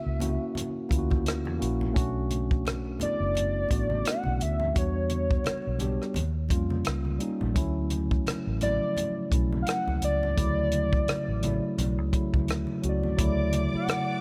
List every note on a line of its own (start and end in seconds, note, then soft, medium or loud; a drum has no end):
0.00 0.19 A#3 medium
0.00 0.20 C#4 medium
0.00 0.21 E4 medium
0.00 0.22 F#4 loud
0.00 1.28 E5 loud
0.06 0.37 C#2 medium
0.19 0.76 A#3 medium
0.19 0.77 C#4 medium
0.19 0.77 E4 medium
0.19 0.78 F#4 medium
0.19 closed hi-hat medium
0.19 muted conga soft
0.19 high conga medium
0.19 low conga medium
0.55 closed hi-hat medium
0.55 muted conga soft
0.55 high conga soft
0.55 low conga medium
0.89 1.46 D2 medium
0.89 1.46 A#3 medium
0.89 1.47 C#4 medium
0.89 1.47 E4 medium
0.89 0.99 F4 medium
0.89 kick medium
0.89 closed hi-hat medium
0.89 muted conga soft
0.99 1.51 F#4 medium
1.10 kick medium
1.10 high conga medium
1.26 cross-stick medium
1.26 closed hi-hat medium
1.26 muted conga soft
1.45 1.59 E2 medium
1.45 high conga medium
1.59 1.92 A#1 medium
1.59 1.88 A#3 medium
1.59 1.88 C#4 medium
1.59 1.89 E4 medium
1.59 1.89 F#4 medium
1.59 closed hi-hat medium
1.81 low conga medium
1.93 2.97 B1 medium
1.93 2.77 A3 loud
1.93 2.77 C#4 loud
1.93 2.78 D4 loud
1.93 2.78 F#4 loud
1.93 kick loud
1.93 closed hi-hat medium
1.93 muted conga soft
2.31 closed hi-hat medium
2.31 high conga medium
2.51 kick medium
2.65 cross-stick medium
2.65 closed hi-hat medium
2.65 high conga medium
2.99 3.56 A3 medium
2.99 3.57 B3 medium
2.99 3.57 D4 medium
2.99 3.58 E4 medium
2.99 4.08 D5 loud
2.99 muted fingered electric bass stroke soft
2.99 closed hi-hat medium
2.99 high conga medium
2.99 low conga medium
3.20 3.64 F#1 medium
3.35 closed hi-hat medium
3.35 low conga medium
3.68 4.01 A1 medium
3.68 4.52 A3 medium
3.68 4.53 B3 medium
3.68 4.53 D4 medium
3.68 4.54 F#4 medium
3.68 kick medium
3.68 closed hi-hat medium
3.68 muted conga soft
3.90 high conga medium
4.05 4.44 F#5 loud
4.05 cross-stick medium
4.05 closed hi-hat medium
4.05 muted conga soft
4.24 4.39 B1 medium
4.24 high conga medium
4.40 4.72 D2 medium
4.40 4.77 E5 loud
4.40 closed hi-hat medium
4.40 muted conga soft
4.60 low conga medium
4.73 5.57 G3 medium
4.73 5.57 B3 medium
4.73 5.58 D4 medium
4.73 5.58 F#4 medium
4.73 kick loud
4.73 closed hi-hat medium
4.73 muted conga soft
4.78 6.83 C#5 loud
5.10 closed hi-hat medium
5.10 high conga medium
5.31 kick medium
5.44 muted fingered electric bass stroke soft
5.44 cross-stick loud
5.44 closed hi-hat medium
5.44 muted conga soft
5.44 high conga medium
5.67 5.97 B1 medium
5.79 6.15 G3 medium
5.79 6.16 B3 medium
5.79 6.16 D4 medium
5.79 6.16 G4 medium
5.79 closed hi-hat medium
5.79 muted conga soft
5.79 high conga medium
5.79 low conga medium
6.02 cross-stick soft
6.14 6.51 D#2 medium
6.14 closed hi-hat medium
6.14 muted conga soft
6.14 low conga medium
6.49 6.81 F2 medium
6.49 7.06 G3 medium
6.49 7.07 A#3 medium
6.49 7.08 C#4 medium
6.49 7.08 F4 loud
6.49 kick medium
6.49 closed hi-hat medium
6.49 muted conga soft
6.70 high conga medium
6.85 7.17 C#2 medium
6.85 cross-stick medium
6.85 closed hi-hat medium
7.05 high conga medium
7.18 7.48 G3 medium
7.18 7.49 A#3 medium
7.18 7.49 C#4 medium
7.18 7.50 D#4 medium
7.18 closed hi-hat medium
7.18 muted conga soft
7.41 7.55 A#1 medium
7.41 low conga medium
7.54 8.17 D2 loud
7.54 8.38 F#3 loud
7.54 8.38 A3 loud
7.54 8.39 C#4 loud
7.54 8.39 E4 loud
7.54 kick medium
7.54 closed hi-hat medium
7.54 muted conga soft
7.90 closed hi-hat medium
7.90 high conga medium
8.11 kick medium
8.27 muted fingered electric bass stroke soft
8.27 cross-stick loud
8.27 closed hi-hat medium
8.27 muted conga soft
8.27 high conga medium
8.47 8.77 A1 medium
8.60 9.18 C#3 medium
8.60 8.68 F3 medium
8.60 9.18 A3 medium
8.60 9.19 E4 medium
8.60 9.28 D5 loud
8.60 closed hi-hat medium
8.60 high conga medium
8.60 low conga medium
8.66 9.20 F#3 medium
8.97 closed hi-hat medium
8.97 muted conga soft
8.97 low conga medium
9.30 9.62 B1 medium
9.30 10.13 F#3 medium
9.30 10.14 A3 medium
9.30 10.14 C#4 medium
9.30 10.15 E4 medium
9.30 kick medium
9.30 closed hi-hat medium
9.52 high conga medium
9.62 9.69 F5 medium
9.67 10.02 F#5 loud
9.67 cross-stick loud
9.67 closed hi-hat medium
9.87 10.00 C#2 medium
9.87 high conga medium
10.02 10.33 C#2 medium
10.02 12.45 D5 loud
10.02 closed hi-hat medium
10.02 muted conga soft
10.23 low conga medium
10.36 10.98 D2 loud
10.36 11.20 C#3 medium
10.36 11.19 F#3 medium
10.36 11.20 A3 medium
10.36 11.20 E4 medium
10.36 kick loud
10.36 closed hi-hat medium
10.72 closed hi-hat medium
10.72 high conga medium
10.93 kick medium
11.08 muted fingered electric bass stroke soft
11.08 cross-stick loud
11.08 closed hi-hat medium
11.08 muted conga soft
11.08 high conga medium
11.28 11.58 A1 medium
11.42 11.99 C#3 medium
11.42 11.98 F#3 medium
11.42 11.99 A3 medium
11.42 12.00 E4 medium
11.42 closed hi-hat medium
11.42 high conga medium
11.42 low conga medium
11.78 11.98 B1 medium
11.78 closed hi-hat medium
11.78 muted conga soft
11.78 low conga medium
11.98 12.11 C#2 medium
12.12 12.70 C#3 medium
12.12 12.69 F#3 medium
12.12 12.69 A3 medium
12.12 12.70 E4 medium
12.12 kick medium
12.12 closed hi-hat medium
12.12 muted conga soft
12.34 12.46 C#2 medium
12.34 kick medium
12.34 high conga medium
12.48 12.66 D2 medium
12.48 cross-stick medium
12.48 closed hi-hat medium
12.67 high conga medium
12.82 13.01 C#2 medium
12.82 13.11 F#3 medium
12.82 13.11 A3 medium
12.82 13.12 C#4 medium
12.82 13.12 F#4 medium
12.82 closed hi-hat medium
12.89 13.72 D5 loud
13.03 13.17 D2 medium
13.03 low conga medium
13.17 13.66 D2 loud
13.17 13.60 C#3 medium
13.17 13.59 F#3 medium
13.17 13.59 A3 medium
13.17 13.60 E4 loud
13.17 14.21 D5 medium
13.17 14.21 D6 medium
13.17 kick loud
13.17 closed hi-hat medium
13.17 muted conga soft
13.53 closed hi-hat medium
13.53 muted conga soft
13.53 high conga medium
13.72 14.21 C#3 medium
13.72 14.21 F#3 medium
13.72 14.21 A3 medium
13.72 14.21 E4 medium
13.72 muted fingered electric bass stroke soft
13.77 14.21 F#5 medium
13.88 cross-stick loud
13.88 closed hi-hat medium
13.88 high conga medium